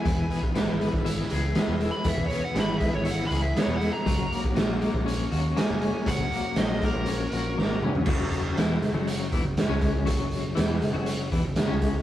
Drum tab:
CC |----------------|----------------|----------------|----------------|
HH |x-x-x-x-x-x-x-x-|x-x-x-x-x-x-x-x-|x-x-x-x-x-x-x-x-|x-x-x-x-x-x-----|
SD |----o----o--o---|----o----o--o---|----o-------o---|----o-------o---|
T2 |----------------|----------------|----------------|--------------o-|
FT |----------------|----------------|----------------|---------------o|
BD |o--o---o--------|oo----o---------|o--o---o--------|oo----o---------|

CC |x---------------|----------------|
HH |--x-x-x-x-x-x-x-|x-x-x-x-x-x-x-x-|
SD |----o-------o---|----o-------o---|
T2 |----------------|----------------|
FT |----------------|----------------|
BD |o---------o---o-|o---------o---o-|